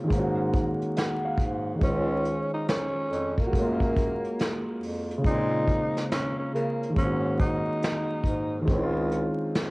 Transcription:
0.00 0.11 C#3 medium
0.00 1.73 D#3 medium
0.00 0.08 G#3 medium
0.00 0.12 A#3 medium
0.00 0.12 C4 medium
0.00 0.11 F4 medium
0.08 0.81 G#2 loud
0.08 1.77 G#3 medium
0.08 1.79 A#3 medium
0.08 kick medium
0.12 1.81 C#4 medium
0.12 closed hi-hat medium
0.19 1.83 F#4 medium
0.53 kick loud
0.53 closed hi-hat medium
0.82 closed hi-hat soft
0.97 1.22 F#5 medium
0.97 snare loud
0.97 closed hi-hat medium
1.25 1.78 F5 medium
1.38 1.83 G#2 medium
1.38 kick medium
1.38 closed hi-hat medium
1.75 3.46 D#3 medium
1.79 2.39 C#2 loud
1.79 3.48 G#3 medium
1.79 3.50 C5 medium
1.79 kick loud
1.83 2.55 C#4 medium
1.83 3.52 C#4 medium
1.83 closed hi-hat medium
1.90 3.54 F4 medium
2.25 closed hi-hat medium
2.54 2.67 D#4 medium
2.69 3.34 C#4 medium
2.69 snare loud
2.69 closed hi-hat loud
3.10 3.46 F2 loud
3.10 closed hi-hat medium
3.38 4.63 A#3 medium
3.38 kick medium
3.38 closed hi-hat soft
3.46 5.20 G#3 medium
3.46 5.18 F#4 medium
3.53 4.24 F#2 loud
3.53 3.62 A3 soft
3.53 kick medium
3.53 closed hi-hat medium
3.58 5.24 A#3 medium
3.58 5.24 C#4 medium
3.58 5.25 F4 medium
3.80 kick medium
3.97 kick loud
3.97 closed hi-hat medium
4.25 closed hi-hat soft
4.39 snare loud
4.39 closed hi-hat medium
4.82 5.17 F2 medium
4.82 open hi-hat medium
5.11 closed hi-hat soft
5.18 6.89 C#3 medium
5.18 6.91 G#3 medium
5.24 5.82 A#2 loud
5.24 6.93 A#3 medium
5.24 6.07 D#4 loud
5.24 kick loud
5.24 closed hi-hat medium
5.29 6.95 C4 medium
5.34 6.97 F4 medium
5.68 kick medium
5.68 closed hi-hat medium
5.97 snare soft
6.12 6.36 C#4 medium
6.12 snare loud
6.12 closed hi-hat medium
6.39 6.52 C#4 medium
6.53 6.88 C#3 medium
6.53 6.93 A#3 medium
6.53 closed hi-hat medium
6.83 closed hi-hat soft
6.90 8.60 D#3 medium
6.94 7.67 G#2 medium
6.94 8.63 G#3 medium
6.94 8.65 A#3 medium
6.94 kick loud
6.98 7.07 C4 soft
6.98 7.36 C#4 medium
6.98 closed hi-hat medium
7.05 8.70 C#4 medium
7.05 8.69 F#4 medium
7.39 8.64 D#4 medium
7.39 kick loud
7.39 closed hi-hat medium
7.83 snare loud
7.83 closed hi-hat medium
8.24 8.69 G#2 medium
8.24 kick medium
8.24 closed hi-hat medium
8.61 9.71 D#3 medium
8.61 9.71 G#3 medium
8.68 9.25 C#2 loud
8.68 9.71 C4 medium
8.68 kick loud
8.68 closed hi-hat medium
8.73 9.71 C#4 medium
8.73 8.80 E4 medium
8.83 9.71 F4 medium
9.11 closed hi-hat medium
9.55 snare loud
9.55 closed hi-hat medium

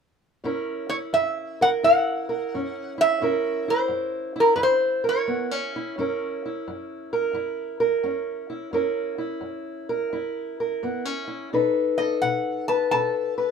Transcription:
0.44 1.08 F#2 medium
0.44 2.54 C#4 medium
0.44 0.89 E4 medium
0.44 1.61 A#4 medium
0.89 1.83 E4 medium
0.89 0.96 C#5 medium
1.13 1.77 F#2 medium
1.13 1.60 E5 medium
1.61 2.29 A#4 medium
1.61 1.68 F#5 loud
1.83 2.48 F#2 medium
1.83 2.97 E4 medium
1.83 3.00 F#5 medium
2.29 3.23 A#4 medium
2.54 3.17 F#2 medium
2.54 3.21 C#4 medium
2.98 3.22 E4 medium
2.98 3.70 E5 loud
3.21 3.85 F#2 medium
3.21 5.27 C#4 medium
3.21 3.68 E4 medium
3.21 5.04 A#4 medium
3.68 4.35 E4 medium
3.68 4.33 C5 medium
3.88 4.53 F#2 medium
4.36 4.56 E4 medium
4.40 4.55 A#4 medium
4.56 5.22 F#2 medium
4.56 5.76 E4 medium
4.56 4.60 B4 medium
4.63 5.03 C5 medium
5.04 6.00 A#4 medium
5.09 7.10 C#5 medium
5.28 5.92 F#2 medium
5.28 5.51 B3 medium
5.51 5.98 C#4 soft
5.76 5.99 E4 medium
5.98 6.62 F#2 medium
5.98 8.02 C#4 medium
5.98 6.45 E4 medium
5.98 7.12 A#4 medium
6.46 7.34 E4 soft
6.68 7.32 F#2 medium
7.13 7.79 A#4 medium
7.33 7.99 F#2 medium
7.33 8.49 E4 medium
7.80 8.71 A#4 medium
8.03 8.69 F#2 medium
8.03 8.71 C#4 soft
8.50 8.71 E4 medium
8.73 9.38 F#2 medium
8.73 10.81 C#4 medium
8.73 9.17 E4 soft
8.73 9.88 A#4 medium
9.18 10.11 E4 soft
9.41 10.07 F#2 medium
9.89 10.59 A#4 medium
10.13 10.77 F#2 medium
10.13 11.26 E4 medium
10.60 11.50 A#4 medium
10.83 11.47 F#2 medium
10.83 11.05 B3 medium
11.05 11.52 C#4 soft
11.28 11.49 E4 medium
11.53 12.17 B2 medium
11.53 13.51 D#4 medium
11.53 11.99 A4 medium
11.53 12.69 B4 medium
11.98 12.93 A4 soft
11.98 12.20 D#5 medium
12.22 12.86 B2 medium
12.22 12.68 F#5 medium
12.68 13.37 B4 medium
12.68 12.90 A5 medium
12.91 13.51 B2 medium
12.91 13.51 A4 medium
12.91 13.51 A5 medium
13.38 13.51 B4 medium

